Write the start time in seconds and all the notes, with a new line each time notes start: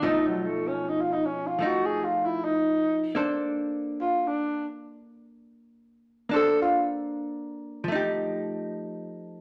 0.02 B2 F3 A3 D#4
0.27 F#3
0.45 A3
0.68 C#4
0.89 D#4
1.01 F4
1.13 D#4
1.26 C#4
1.47 F4
1.59 F3 A3 D#4
1.66 F#4
1.86 G#4
2.04 F4
2.25 E4
2.45 D#4
3.15 A#3 D4 A4 C5
4.01 F4
4.27 D4
6.29 A#3 D4 A4
6.34 A4 C5
6.62 F4
7.84 F3
7.88 A3 D#4
7.95 G4